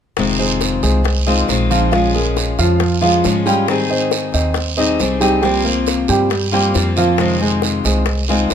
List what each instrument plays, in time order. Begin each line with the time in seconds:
0.17 upright bass F1, steel-string acoustic guitar C3 D#3 G#3 C4 F4, high bongo, long guiro
0.38 grand piano G#3 G#4 C5, high bongo
0.61 high bongo, short guiro
0.83 upright bass C2, grand piano G#3 G#4 C5, high bongo, short guiro
1.04 muted steel-string acoustic guitar stroke, high bongo, long guiro
1.27 steel-string acoustic guitar D#3 G#3 C4 F4, grand piano G#3 G#4 C5, high bongo
1.48 upright bass A#1, steel-string acoustic guitar D#3 G#3 C4 F4, high bongo, low bongo, short guiro
1.70 steel-string acoustic guitar D#3 G#3 C4 F4, grand piano F3 F4 F5, short guiro
1.91 grand piano F3 F4 F5, steel-string acoustic guitar F3 G#3 C#4 F4, high bongo, long guiro
2.14 grand piano G#3 G#4 A#4, high bongo
2.37 high bongo, short guiro
2.59 upright bass F2, grand piano F3 F4 F5, high bongo, short guiro
2.80 muted steel-string acoustic guitar stroke, high bongo, long guiro
3.01 grand piano F3 F4 F5, steel-string acoustic guitar G#3 C#4 F4, high bongo
3.24 upright bass G#2, steel-string acoustic guitar F3 G#3 C#4 F4, high bongo, low bongo, short guiro
3.46 grand piano G3 G5, steel-string acoustic guitar G#3 C#4 F4, short guiro
3.68 steel-string acoustic guitar D#3 C4 D#4 G#4, high bongo, long guiro
3.90 grand piano C4 C5 D#5, high bongo
4.11 high bongo, short guiro
4.32 upright bass D#2, grand piano C4 C5 D#5, high bongo, short guiro
4.54 muted steel-string acoustic guitar stroke, high bongo, long guiro
4.77 steel-string acoustic guitar G3 C4 D#4 G#4, grand piano C4 C5 D#5, high bongo
4.99 upright bass C2, steel-string acoustic guitar G3 C4 D#4 G#4, high bongo, low bongo, short guiro
5.20 grand piano G3 G4 G5, steel-string acoustic guitar G3 C4 D#4 G#4, short guiro
5.42 steel-string acoustic guitar C3 F3 A#3 C4 F4, grand piano G3 G4 G5, high bongo, long guiro
5.64 grand piano A#3 A#4 C5, high bongo
5.86 high bongo, short guiro
6.08 upright bass G2, grand piano G3 G4 G5, high bongo, short guiro
6.30 muted steel-string acoustic guitar stroke, high bongo, long guiro
6.52 steel-string acoustic guitar F3 A#3 C4 F4, grand piano G3 G4 G5, high bongo
6.74 upright bass F2, steel-string acoustic guitar F3 A#3 C4 F4, high bongo, low bongo, short guiro
6.96 grand piano F3 F4 F5, steel-string acoustic guitar F3 A#3 C4 F4, short guiro
7.18 steel-string acoustic guitar C3 D#3 G#3 C4 F4, high bongo, long guiro
7.40 grand piano G#3 G#4 C5, high bongo
7.62 high bongo, short guiro
7.84 upright bass C2, grand piano G#3 G#4 C5, high bongo, short guiro
8.06 muted steel-string acoustic guitar stroke, high bongo, long guiro
8.28 steel-string acoustic guitar D#3 G#3 C4 F4, grand piano G#3 G#4 C5, high bongo
8.50 steel-string acoustic guitar D#3 G#3, high bongo, low bongo, short guiro